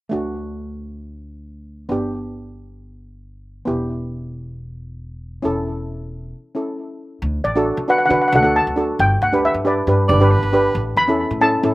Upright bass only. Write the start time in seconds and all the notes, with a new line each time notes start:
0.11 D2
1.89 G1
3.67 E1
5.44 E1
7.22 D2
7.44 A1
7.77 D3
8.10 D3
8.32 D2
8.67 D2
8.99 G1
9.22 D2
9.54 G2
9.87 G2
10.09 G1
10.43 G1
10.75 A1
10.96 E2
11.31 A2
11.63 A2